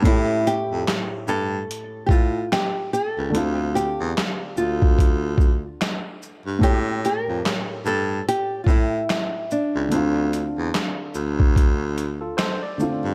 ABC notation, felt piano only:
X:1
M:4/4
L:1/8
Q:"Swing 16ths" 1/4=73
K:Dm
V:1 name="Felt piano"
[A,,A,^CG]8 | [D,A,CF]8 | [A,,A,^FG^c]8 | [D,A,CF]6- [D,A,CF] [D,A,CF] |]